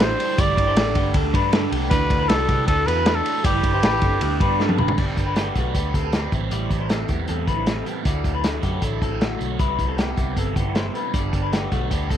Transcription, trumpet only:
0.03 C5
0.40 D5
1.91 B4
2.28 A4
2.67 A4
2.86 B4
3.15 A4
3.45 G4

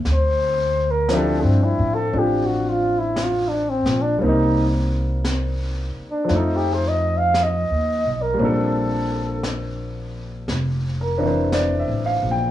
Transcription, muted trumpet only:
0.13 C5
0.91 A#4
1.16 A4
1.41 C4
1.64 E4
1.95 A4
2.19 G4
2.46 F#4
2.69 F4
2.99 E4
3.23 F4
3.49 D4
3.70 C4
4.02 D4
4.28 D#4
6.11 D4
6.38 D#4
6.56 G4
6.74 C5
6.89 D#5
7.18 F5
7.43 D#5
8.22 A#4
8.49 A4

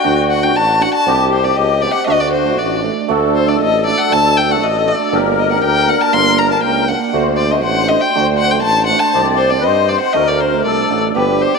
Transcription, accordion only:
Already playing: F#4
1.07 G4
2.07 F#4
3.09 A4
5.13 A#4
7.14 C5
9.14 D5
9.60 B4
9.65 C5
10.16 A#4
10.65 A4
11.14 G4

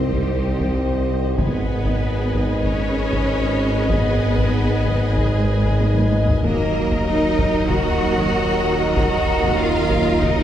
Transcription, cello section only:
Already playing: C4
0.12 G3
1.38 B3
2.65 C#4
3.91 B3
5.18 G#3
6.45 A#3
7.08 D#4
7.70 F#4
8.96 F#4
9.59 F4
10.23 D#4

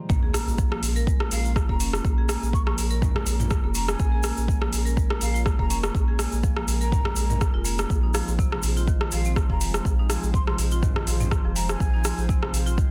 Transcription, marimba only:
0.09 A#3
0.23 G#4
0.34 A#3
0.58 F3
0.72 A#3
0.96 A#4
1.08 G#3
1.32 A#3
1.45 F4
1.69 A#3
1.80 C#4
2.05 A#3
2.18 G#4
2.29 A#3
2.53 F3
2.66 A#3
2.91 A#4
3.02 G#3
3.26 A#3
3.39 F4
3.64 A#3
3.75 C#4
3.99 A#3
4.12 G#4
4.24 A#3
4.48 F3
4.61 A#3
4.85 A#4
4.96 G#3
5.21 A#3
5.34 F4
5.59 A#3
5.70 C#4
5.95 A#3
6.08 G#4
6.19 A#3
6.43 F3
6.57 A#3
6.81 A#4
6.92 G#3
7.17 G#3
7.30 A#4
7.54 F4
7.65 A#3
7.90 F3
8.03 D#4
8.14 F3
8.39 C3
8.52 F3
8.77 F4
8.88 D#3
9.12 F3
9.26 C4
9.50 F3
9.62 G#3
9.86 F3
9.99 D#4
10.10 F3
10.34 C3
10.48 F3
10.72 F4
10.83 D#3
11.08 F3
11.20 C4
11.45 F3
11.56 G#3
11.80 F3
11.94 D#4
12.05 F3
12.29 C3
12.42 F3
12.66 F4
12.77 D#3

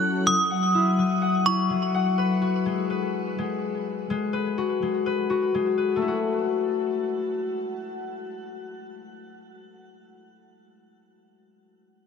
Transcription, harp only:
Already playing: F#3 E4 B4 F#5
0.26 F#3
0.50 F#5
0.75 E4
0.98 F#3
1.22 F#5
1.46 E4
1.70 F#3
1.94 F#5
2.18 B4
2.42 F#4
2.66 G#3
2.90 B4
3.38 G#3
4.10 G#3
4.33 B4
4.58 F#4
4.82 G#3
5.06 B4
5.30 F#4
5.54 G#3
5.78 B4
5.96 A3
6.02 E4
6.08 F#4

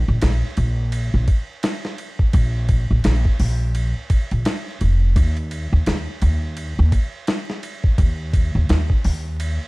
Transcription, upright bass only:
0.08 A#1
0.22 A#1
0.57 A#1
1.14 A#1
2.34 A#1
2.91 A#1
3.05 A#1
3.40 A#1
4.32 A#1
4.81 F1
5.16 D#2
5.73 D#2
5.87 D#2
6.22 D#2
6.79 D#2
7.99 D#2
8.55 D#2
8.69 D#2
9.05 D#2

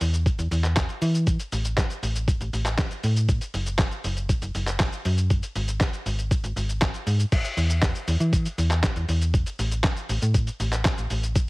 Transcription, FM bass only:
0.01 E2
0.39 E2
0.51 E2
1.02 E3
1.52 A1
2.03 A1
2.41 A1
2.53 A1
3.04 A2
3.54 F#1
4.04 F#1
4.42 F#1
4.55 F#1
5.05 F#2
5.56 G#1
6.06 G#1
6.44 G#1
6.56 G#1
7.07 G#2
7.57 E2
8.08 E2
8.20 E3
8.58 E2
8.96 E2
9.09 E2
9.59 A1
10.09 A1
10.22 A2
10.60 A1
10.98 A1
11.10 A1

